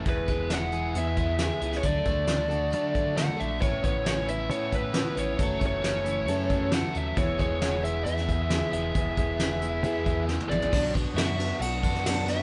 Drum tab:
CC |----------------|----------------|----------------|----------------|
RD |----------------|----------------|----------------|----------------|
HH |x-x-x-x-x-x-x-x-|x-x-x-x-x-x-x-x-|x-x-x-x-x-x-x-x-|x-x-x-x-x-x-x-x-|
SD |----o-------o--o|----o-------o---|----o-------o---|----o-------o---|
T1 |----------------|----------------|----------------|----------------|
T2 |----------------|----------------|----------------|----------------|
FT |----------------|----------------|----------------|----------------|
BD |o-o-------o-----|o-o-------o-----|o-o-------o-----|o-o-------o-----|

CC |----------------|----------------|x---------------|
RD |----------------|----------------|--x-x-x-x-x-x-x-|
HH |x-x-x-x-x-x-x-x-|x-x-x-x-x-x-----|----------------|
SD |----o----o--o---|----o-------o---|----o------oo-o-|
T1 |----------------|-------------o--|----------------|
T2 |----------------|--------------o-|----------------|
FT |----------------|---------------o|----------------|
BD |o-o-------o-----|o-o-------o-----|o-o-------o-----|